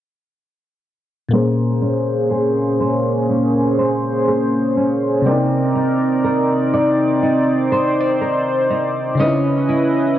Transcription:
1.28 5.20 A#2 medium
1.28 5.21 A#3 medium
1.33 5.22 A#3 medium
1.33 5.25 A#3 medium
1.33 5.22 C#4 medium
1.33 5.22 G#4 medium
1.33 5.24 G#4 medium
1.33 3.28 C5 medium
1.33 2.80 C5 medium
1.38 5.25 C5 medium
1.82 3.28 C#4 medium
2.31 4.26 G#4 medium
2.80 3.78 C5 medium
3.29 4.76 C#4 medium
3.29 5.24 C5 medium
3.78 5.26 C5 medium
4.28 5.38 G#4 medium
4.77 5.38 C#4 medium
5.22 9.13 C3 medium
5.22 9.15 C4 medium
5.26 9.19 C4 medium
5.26 9.16 C4 medium
5.26 5.34 D4 soft
5.26 9.16 D#4 medium
5.26 7.21 A#4 medium
5.26 9.17 A#4 medium
5.26 9.16 D5 medium
5.26 6.73 D5 medium
5.31 9.18 D#4 medium
5.31 9.18 D5 medium
5.75 7.22 D#4 medium
6.24 8.20 A#4 medium
6.74 7.72 D5 medium
7.23 8.70 D#4 medium
7.23 9.18 C5 medium
7.72 8.01 C5 medium
8.01 9.20 D5 soft
8.21 9.31 A#4 medium
8.70 9.68 D#4 medium
9.15 10.19 C#3 medium
9.15 10.19 C#4 medium
9.19 10.19 C#4 medium
9.19 9.27 D#4 soft
9.19 10.19 E4 medium
9.19 10.19 B4 medium
9.19 10.19 D#5 medium
9.24 10.19 E4 medium
9.24 10.19 D#5 medium
9.69 10.19 E4 medium

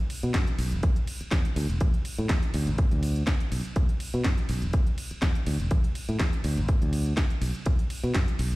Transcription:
0.10 open hi-hat loud
0.10 ride medium
0.23 0.31 B2 medium
0.23 closed hi-hat soft
0.34 0.44 F#2 medium
0.34 kick loud
0.34 snare loud
0.34 closed hi-hat medium
0.47 closed hi-hat medium
0.58 0.73 B1 loud
0.58 open hi-hat loud
0.58 ride medium
0.72 0.89 E1 medium
0.72 closed hi-hat soft
0.83 kick loud
0.83 closed hi-hat medium
0.96 closed hi-hat medium
1.07 open hi-hat loud
1.07 ride medium
1.21 muted fingered electric bass stroke soft
1.21 closed hi-hat soft
1.31 1.41 E2 medium
1.31 kick loud
1.31 snare loud
1.31 closed hi-hat medium
1.45 closed hi-hat medium
1.56 1.66 D2 loud
1.56 open hi-hat loud
1.56 ride medium
1.69 1.77 E1 medium
1.69 closed hi-hat soft
1.81 1.90 A1 loud
1.81 kick loud
1.81 closed hi-hat medium
1.94 closed hi-hat soft
2.05 open hi-hat loud
2.05 ride medium
2.18 2.26 A2 medium
2.18 closed hi-hat soft
2.29 2.39 E2 medium
2.29 kick loud
2.29 snare loud
2.29 closed hi-hat medium
2.43 closed hi-hat medium
2.54 2.69 D2 loud
2.54 open hi-hat loud
2.54 ride medium
2.67 2.84 A1 medium
2.67 closed hi-hat soft
2.78 kick loud
2.78 closed hi-hat medium
2.91 3.22 D2 loud
2.91 closed hi-hat medium
3.03 open hi-hat loud
3.03 ride medium
3.16 closed hi-hat soft
3.27 kick loud
3.27 snare loud
3.27 closed hi-hat medium
3.40 closed hi-hat medium
3.52 3.61 B1 medium
3.52 open hi-hat loud
3.52 ride medium
3.65 closed hi-hat soft
3.76 3.85 B1 loud
3.76 kick loud
3.76 closed hi-hat medium
3.89 closed hi-hat soft
4.00 open hi-hat loud
4.00 ride medium
4.13 4.22 B2 medium
4.13 closed hi-hat soft
4.24 4.34 F#2 medium
4.24 kick loud
4.24 snare loud
4.24 closed hi-hat medium
4.38 closed hi-hat soft
4.49 4.64 B1 loud
4.49 open hi-hat loud
4.49 ride medium
4.62 4.79 E1 medium
4.62 closed hi-hat soft
4.73 kick loud
4.73 closed hi-hat medium
4.87 closed hi-hat soft
4.98 open hi-hat loud
4.98 ride medium
5.11 muted fingered electric bass stroke soft
5.11 closed hi-hat soft
5.22 5.32 E2 medium
5.22 kick loud
5.22 snare loud
5.22 closed hi-hat medium
5.35 closed hi-hat medium
5.46 5.56 D2 loud
5.46 open hi-hat loud
5.46 ride medium
5.60 5.68 E1 medium
5.60 closed hi-hat soft
5.71 5.80 A1 loud
5.71 kick loud
5.71 closed hi-hat medium
5.84 closed hi-hat medium
5.95 open hi-hat loud
5.95 ride medium
6.09 6.17 A2 medium
6.09 closed hi-hat soft
6.20 6.29 E2 medium
6.20 kick loud
6.20 snare loud
6.20 closed hi-hat medium
6.33 closed hi-hat medium
6.44 6.59 D2 loud
6.44 open hi-hat loud
6.44 ride medium
6.57 6.74 A1 medium
6.57 closed hi-hat soft
6.68 kick loud
6.68 closed hi-hat medium
6.82 7.12 D2 loud
6.82 closed hi-hat medium
6.93 open hi-hat loud
6.93 ride medium
7.06 closed hi-hat soft
7.17 kick loud
7.17 snare loud
7.17 closed hi-hat medium
7.30 closed hi-hat medium
7.42 7.51 B1 medium
7.42 open hi-hat loud
7.42 ride medium
7.55 closed hi-hat soft
7.66 7.76 B1 loud
7.66 kick loud
7.66 closed hi-hat medium
7.79 closed hi-hat medium
7.90 open hi-hat loud
7.90 ride medium
8.04 8.12 B2 medium
8.04 closed hi-hat soft
8.14 8.24 F#2 medium
8.14 kick loud
8.14 snare loud
8.14 closed hi-hat medium
8.28 closed hi-hat medium
8.39 8.54 B1 loud
8.39 open hi-hat loud
8.39 ride medium
8.52 8.56 E1 medium
8.52 closed hi-hat soft

